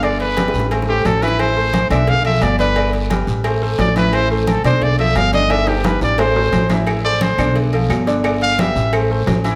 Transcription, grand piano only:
X:1
M:4/4
L:1/8
Q:1/4=175
K:Am
V:1 name="Grand piano"
[D,Dd]2 [G,GB]2 [A,Ac] [A,Ac]2 [E,Ee]- | [E,Ee] [A,Ac]2 [D,Dd]2 [F,FA]2 [D,Dd] | [D,Dd]2 [G,GB]2 [A,Ac] [A,Ac]2 [E,Ee]- | [E,Ee] [A,Ac]2 [D,Dd]2 [F,FA]2 [D,Dd] |
[D,Dd]2 [G,GB]2 [A,Ac] [A,Ac]2 [E,Ee]- | [E,Ee] [A,Ac]2 [D,Dd]2 [F,FA]2 [D,Dd] | [D,Dd]2 [G,GB]2 [A,Ac] [A,Ac]2 [E,Ee] |]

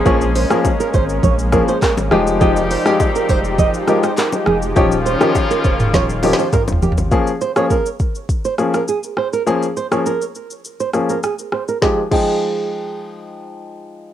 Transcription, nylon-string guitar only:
X:1
M:4/4
L:1/16
Q:1/4=102
K:Bbdor
V:1 name="Nylon-string guitar"
d z c B z B c z d z B c B z A z | e z c B z B c z e z B c B z A z | d z c B z B c z d z B c B z G z | z2 c d B2 z3 c z B A z c B |
z2 c d B2 z3 c z B A z c B | A2 A8- A2 z4 |]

